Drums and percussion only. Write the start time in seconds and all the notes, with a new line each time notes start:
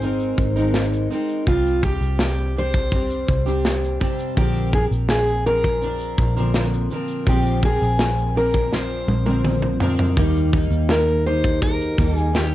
0.02 shaker
0.20 shaker
0.38 kick, shaker
0.57 shaker
0.74 snare, shaker
0.94 shaker
1.12 shaker
1.29 shaker
1.47 kick, shaker
1.66 shaker
1.83 kick, shaker
2.03 shaker
2.19 snare, shaker
2.38 shaker
2.74 kick, shaker
2.92 kick, shaker
3.10 shaker
3.28 kick
3.47 shaker
3.65 snare, shaker
3.84 shaker
4.01 kick
4.19 shaker
4.37 kick, shaker
4.56 shaker
4.73 kick
4.92 shaker
5.09 snare, shaker
5.28 shaker
5.64 kick, shaker
5.82 shaker
6.00 shaker
6.18 kick, shaker
6.37 shaker
6.54 snare, shaker
6.74 shaker
6.91 shaker
7.08 shaker
7.27 kick, shaker
7.46 shaker
7.63 kick
7.82 shaker
7.99 snare, shaker
8.18 shaker
8.54 kick, shaker
8.73 snare
9.08 high tom
9.26 high tom
9.44 mid tom
9.62 mid tom
9.80 floor tom
9.99 floor tom
10.17 kick, shaker
10.35 shaker
10.53 kick
10.71 shaker
10.89 snare, shaker
11.08 shaker
11.25 shaker
11.43 kick, shaker
11.62 kick, shaker
11.80 shaker
11.98 kick
12.16 shaker
12.34 snare, shaker